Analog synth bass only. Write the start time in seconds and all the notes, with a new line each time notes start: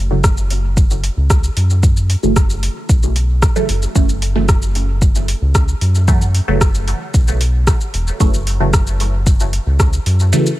Already playing: F#1
1.17 C#2
1.57 F#2
2.23 F#1
2.89 B1
3.69 F#1
3.95 F#1
5.42 C#2
5.81 F#2
6.48 F#1
7.14 B1
7.94 E1
8.20 F#1
9.67 C#2
10.06 F#2